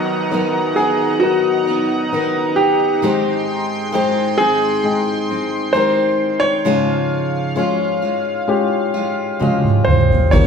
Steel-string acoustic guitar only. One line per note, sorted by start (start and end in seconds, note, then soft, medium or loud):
0.00 2.91 D#3 medium
0.00 0.30 F#3 medium
0.00 0.31 B3 medium
0.00 0.33 D#4 medium
0.00 0.33 A#4 medium
0.31 0.77 F#3 soft
0.31 0.78 B3 soft
0.31 0.77 D#4 medium
0.31 0.75 A#4 medium
0.76 1.69 B3 soft
0.76 1.68 D#4 soft
0.76 1.66 A#4 soft
1.67 2.12 B3 soft
1.67 2.13 D#4 soft
1.67 2.13 A#4 soft
2.13 3.03 B3 medium
2.13 3.03 D#4 medium
2.13 3.04 A#4 medium
3.02 3.91 D#3 medium
3.02 3.93 G#3 medium
3.02 3.94 C4 medium
3.02 3.94 G4 medium
3.92 4.39 D#3 medium
3.92 4.39 G#3 medium
3.92 4.39 C4 medium
3.92 4.40 G4 medium
4.40 5.31 G#3 soft
4.40 5.30 C4 soft
5.31 5.74 G#3 soft
5.31 5.75 C4 soft
5.74 6.65 D#3 medium
5.74 6.65 G#3 medium
5.74 6.68 C4 medium
5.74 6.66 G4 medium
6.65 7.57 C#3 medium
6.65 7.54 F3 medium
6.65 7.56 G#3 medium
6.65 7.57 F4 medium
7.56 8.02 F3 medium
7.56 8.03 G#3 medium
7.56 8.01 F4 medium
8.02 8.95 G#3 soft
8.02 8.93 F4 medium
8.94 9.39 G#3 soft
8.94 9.41 F4 medium
9.39 10.32 F3 medium
9.39 10.33 G#3 medium
9.39 10.34 F4 medium
10.32 10.47 D#3 medium
10.32 10.47 A#3 medium
10.32 10.47 C#4 medium
10.32 10.47 G4 medium